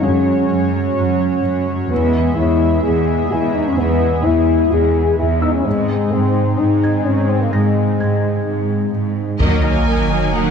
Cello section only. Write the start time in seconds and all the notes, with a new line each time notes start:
0.03 F#2
0.50 F#2
0.97 F#2
1.44 F#2
1.91 E2
2.38 E2
2.84 E2
3.31 E2
3.78 E2
4.25 E2
4.72 E2
5.19 E2
5.66 G#2
6.13 G#2
6.59 G#2
7.06 G#2
7.53 G#2
8.00 G#2
8.47 G#2
8.94 G#2
9.41 D#3
9.88 D#3
10.34 D#3